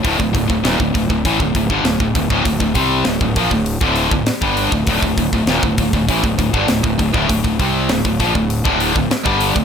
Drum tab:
HH |o-o-o-o-o-o-o-o-|o-o-o-o-o-o-o-o-|o-o-o-o-o-o-o-o-|o-o-o-o-o-o-o-o-|
SD |----o-------o---|----o-------o---|----o-------o---|----o-------o---|
BD |oooo-ooooooo-ooo|ooo--ooo-o-o-o-o|oooo-ooooooo-ooo|ooo--ooo-o-o-o-o|